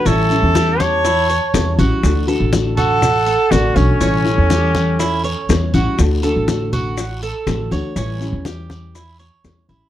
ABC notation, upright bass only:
X:1
M:4/4
L:1/16
Q:1/4=121
K:D
V:1 name="Upright bass" clef=bass
A,,,3 E,,8 z E,,2 A,,, z | D,,3 A,,,8 z A,,,2 B,,, z | A,,,3 E,,8 z E,,2 A,,, z | D,,3 A,,,8 z A,,,2 D,, z |
A,,,3 E,,8 z E,,2 A,,, z |]